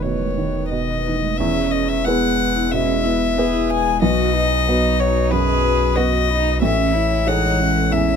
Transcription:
Already playing: sub bass E1, felt piano E2 B2 D#3 E5, analog synth pad D#3 A3 B4
0.02 felt piano B2, cello E3, violin C#5
0.21 cello G#3
0.37 felt piano D#3, cello E3
0.54 cello D#3
0.70 cello B2, felt piano B2, violin D#5
0.89 cello D#3
1.05 cello E3, felt piano D#4
1.22 cello G#3
1.37 sub bass E1, felt piano E2, analog synth pad G#3 E4 B4, cello C#4, marimba E4, violin E5
1.55 marimba G#4
1.71 marimba G#4, violin D#5
1.89 marimba G#4, violin E5
2.05 cello B3, felt piano B3 G#4 B4, marimba E4, violin F#5
2.23 marimba G#4
2.40 marimba B4
2.55 marimba E4
2.71 felt piano B2, cello C#4, violin E5, marimba E5
2.88 marimba G#4
3.04 cello B3, marimba E4
3.37 felt piano B3 G#4 B4, cello G#4, marimba B4
3.53 marimba E4
3.69 marimba E5, violin G#5
4.01 felt piano B1, sub bass B1, analog synth pad F#3 F#4, cello F#4, marimba B4, violin D#5
4.35 cello D#4, marimba D#5
4.51 marimba D#5
4.67 felt piano B3 F#4 B4, marimba B4
4.84 marimba D#5
5.00 violin C#5, marimba F#5
5.16 marimba B4
5.31 felt piano F#2, cello G#4, violin B4, marimba B5
5.49 marimba D#5
5.65 marimba B4
5.96 felt piano B3 F#4 B4, cello F#4, violin D#5, marimba F#5
6.13 marimba B4
6.30 cello D#4, marimba B5
6.61 felt piano A1, sub bass A1, analog synth pad E3 G#3 C#5, cello C#4, marimba A4, violin E5
6.78 marimba C#5
6.92 cello E4, marimba C#5
7.11 marimba C#5
7.25 felt piano E3 G#4 C#5, cello D#4, marimba A4, violin F#5
7.44 marimba C#5
7.59 cello C#4, marimba E5
7.77 marimba A4
7.91 felt piano E2, cello C#4, violin E5, marimba G#5
8.10 marimba C#5

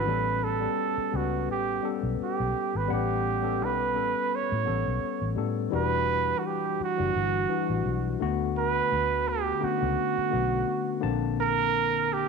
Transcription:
Already playing: trumpet B4
0.06 fingered electric bass A1, tine electric piano G3 B3 C#4 A4
0.44 trumpet A4
0.60 tine electric piano G3 B3 C#4 A4
0.98 muted fingered electric bass stroke
1.12 fingered electric bass C#2, tine electric piano G3 B3 C#4 B4
1.16 trumpet F#4
1.49 fingered electric bass A1, trumpet G4
1.82 tine electric piano G3 B3 C#4 A4
2.03 fingered electric bass B1
2.20 trumpet G4, muted fingered electric bass stroke
2.40 fingered electric bass B1
2.75 fingered electric bass G#1, trumpet B4
2.88 fingered electric bass A1, tine electric piano G3 B3 C#4 F#5
2.93 trumpet G4
3.42 tine electric piano G3 B3 C#4 A4
3.62 fingered electric bass B1, trumpet B4
3.94 fingered electric bass A1, tine electric piano G3 B3 C#4 A4
4.35 trumpet C#5
4.52 fingered electric bass A2
4.65 fingered electric bass A1, tine electric piano G3 B3 C#4 A4
4.88 fingered electric bass B1
5.22 fingered electric bass A1
5.36 fingered electric bass A2, tine electric piano G3 B3 C#4 A4
5.70 fingered electric bass E1, tine electric piano E3 G3 D4 F#4
5.75 trumpet B4
6.39 trumpet F#4
6.47 trumpet G4
6.80 trumpet F#4, muted fingered electric bass stroke
6.97 fingered electric bass F#1, tine electric piano E3 G3 D4 F#4
7.16 fingered electric bass G1
7.49 tine electric piano E3 G3 D4 F#4
7.70 fingered electric bass A1
7.86 fingered electric bass B1
8.20 fingered electric bass D2, tine electric piano D3 A3 B3 F#4
8.58 trumpet B4
8.92 fingered electric bass D2
9.29 trumpet G4
9.60 tine electric piano D3 A3 B3 C#4, muted fingered electric bass stroke
9.64 trumpet F#4
9.79 fingered electric bass C#2, tine electric piano D3 A3 B3 F#4
10.18 muted fingered electric bass stroke
10.30 fingered electric bass B1, tine electric piano D3 A3 B3 F#4
11.01 fingered electric bass A#1, tine electric piano D3 A#3 C4 A5
11.41 trumpet A#4
12.13 trumpet G4

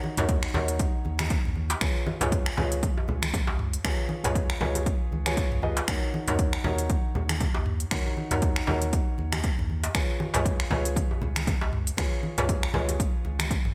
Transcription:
Already playing: felt piano D#4 F#4 A#4 C#5
0.04 high conga
0.17 sub bass D#2, felt piano D#4 F#4 A#4 C#5, closed hi-hat, mid tom, djembe slap, low conga
0.29 kick, closed hi-hat, muted conga, djembe tone
0.43 finger snap
0.54 sub bass D#2, felt piano D#4 F#4 A#4 C#5, djembe slap, high conga, low conga
0.68 closed hi-hat, muted conga
0.79 kick, closed hi-hat, djembe tone
1.05 sub bass D#2, muted conga, high conga
1.19 finger snap, closed hi-hat, djembe tone, high conga
1.30 kick, closed hi-hat
1.45 sub bass D#2, mid tom, muted conga
1.55 high conga
1.70 closed hi-hat, djembe slap, djembe tone
1.81 sub bass C#2, felt piano F4 G#4 B4 C#5, finger snap, kick, closed hi-hat, muted conga, high conga
2.06 high conga, djembe tone
2.21 sub bass C#2, felt piano F4 G#4 B4 C#5, closed hi-hat, mid tom, djembe slap, low conga
2.32 kick, closed hi-hat, muted conga
2.46 finger snap
2.57 sub bass C#2, felt piano F4 G#4 B4 C#5, djembe slap, high conga, djembe tone, low conga
2.72 closed hi-hat, muted conga
2.83 kick, closed hi-hat, high conga
2.97 djembe tone
3.08 sub bass C#2, muted conga, low conga
3.22 finger snap, closed hi-hat, high conga
3.33 kick, closed hi-hat, high conga, low conga
3.47 sub bass C#2, djembe slap, muted conga, djembe tone
3.59 mid tom
3.73 closed hi-hat
3.85 sub bass C#2, felt piano F4 G#4 B4 C#5, finger snap, kick, closed hi-hat, muted conga, djembe tone, high conga
4.09 high conga
4.24 sub bass C#2, felt piano F4 G#4 B4 C#5, closed hi-hat, mid tom, djembe slap, low conga
4.35 kick, closed hi-hat, djembe tone
4.50 finger snap
4.61 sub bass C#2, felt piano F4 G#4 B4 C#5, djembe slap, high conga, low conga
4.75 closed hi-hat, muted conga, djembe tone
4.86 kick, closed hi-hat
5.12 sub bass C#2, muted conga, high conga
5.26 felt piano F4 G#4 B4 C#5, finger snap, closed hi-hat, djembe tone, high conga
5.37 kick, closed hi-hat
5.51 sub bass C#2, mid tom, muted conga
5.62 felt piano F4 G#4 B4 D#5, high conga, djembe tone
5.77 closed hi-hat, djembe slap
5.88 sub bass D#2, felt piano D#4 F#4 A#4 C#5, finger snap, kick, closed hi-hat, muted conga, high conga
6.14 high conga
6.27 sub bass D#2, felt piano D#4 F#4 A#4 C#5, closed hi-hat, mid tom, djembe slap, djembe tone, low conga
6.39 kick, closed hi-hat
6.53 finger snap
6.64 sub bass D#2, felt piano D#4 F#4 A#4 C#5, djembe slap, high conga, djembe tone, low conga
6.78 closed hi-hat, muted conga
6.89 kick, closed hi-hat, high conga
7.15 sub bass D#2, muted conga, djembe tone, low conga
7.29 finger snap, closed hi-hat, high conga
7.41 kick, closed hi-hat, high conga, low conga
7.54 sub bass D#2, muted conga, djembe slap, djembe tone
7.66 mid tom
7.80 closed hi-hat
7.91 sub bass D#2, felt piano D#4 F#4 A#4 C#5, finger snap, kick, closed hi-hat, muted conga, high conga
8.06 djembe tone
8.17 high conga
8.31 sub bass D#2, felt piano D#4 F#4 A#4 C#5, closed hi-hat, mid tom, djembe slap, low conga
8.42 kick, closed hi-hat, muted conga, djembe tone
8.56 finger snap
8.67 sub bass D#2, felt piano D#4 F#4 A#4 C#5, djembe slap, high conga, low conga
8.82 closed hi-hat, muted conga
8.93 kick, closed hi-hat, djembe tone
9.18 sub bass D#2, muted conga, high conga
9.32 finger snap, closed hi-hat, high conga, djembe tone
9.44 kick, closed hi-hat
9.58 sub bass D#2, mid tom, muted conga
9.70 high conga
9.84 closed hi-hat, djembe slap, djembe tone
9.95 sub bass C#2, felt piano F4 G#4 B4 C#5, finger snap, kick, closed hi-hat, muted conga, high conga
10.20 djembe tone, high conga
10.34 sub bass C#2, felt piano F4 G#4 B4 C#5, closed hi-hat, mid tom, djembe slap, low conga
10.45 kick, closed hi-hat, muted conga
10.60 finger snap
10.70 sub bass C#2, felt piano F4 G#4 B4 C#5, djembe slap, high conga, djembe tone, low conga
10.85 closed hi-hat, muted conga
10.96 kick, closed hi-hat, high conga
11.11 djembe tone
11.22 sub bass C#2, muted conga, low conga
11.36 finger snap, closed hi-hat, high conga
11.47 kick, closed hi-hat, high conga, low conga
11.61 sub bass C#2, djembe slap, muted conga, djembe tone
11.73 mid tom
11.87 closed hi-hat
11.97 sub bass C#2, felt piano F4 G#4 B4 C#5, finger snap, kick, closed hi-hat, muted conga, djembe tone, high conga
12.23 high conga
12.38 sub bass C#2, felt piano F4 G#4 B4 C#5, closed hi-hat, mid tom, djembe slap, low conga
12.49 kick, closed hi-hat, muted conga, djembe tone
12.63 finger snap
12.74 sub bass C#2, felt piano F4 G#4 B4 C#5, djembe slap, high conga, low conga
12.89 closed hi-hat, muted conga, djembe tone
13.00 kick, closed hi-hat
13.25 sub bass C#2, muted conga, high conga
13.39 finger snap, closed hi-hat, djembe tone, high conga
13.51 kick, closed hi-hat
13.65 sub bass G#1, mid tom, muted conga

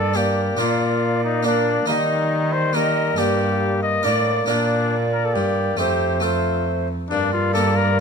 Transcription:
Already playing: harpsichord G2 A#3 D4, cello G2, cornet A4, recorder D5
0.14 harpsichord A#3 D4, bassoon A#3, cornet G4, recorder D5
0.57 harpsichord A#2 A#3 D4, cello A#2, bassoon A#3, cornet F4, recorder D5
1.25 cornet D#4
1.43 harpsichord A#3 D4, bassoon A#3, recorder D5
1.47 cornet D4
1.86 cello D#3, harpsichord D#3 A#3 D#4, bassoon G3, cornet D#4, recorder F5
1.92 recorder D#5
2.53 cornet C5
2.73 bassoon G3, harpsichord A#3 D#4, cornet A#4, recorder D#5
3.16 cello G2, harpsichord G2 A#3 D4, bassoon A#3, cornet G4, recorder D5
3.83 cornet D#5
4.03 harpsichord A2 D4 A#4, cello A2, bassoon A#3, cornet D5, recorder D5
4.46 cello A#2, harpsichord A#2 A#3 D4, bassoon A#3, cornet D4, recorder D5
5.13 cornet A#4
5.25 cornet A4
5.34 cello G2, harpsichord G2, cornet G4
5.77 harpsichord F2 A3 C4, cello F2, bassoon A3, cornet G4, recorder C5
6.20 harpsichord A3 C4, bassoon A3, cornet F4, recorder C5
7.10 cello G2, harpsichord G2, bassoon A#3, cornet D4, recorder D5
7.33 cornet F4
7.54 harpsichord A#3 D4, cornet A4
7.77 cornet A#4

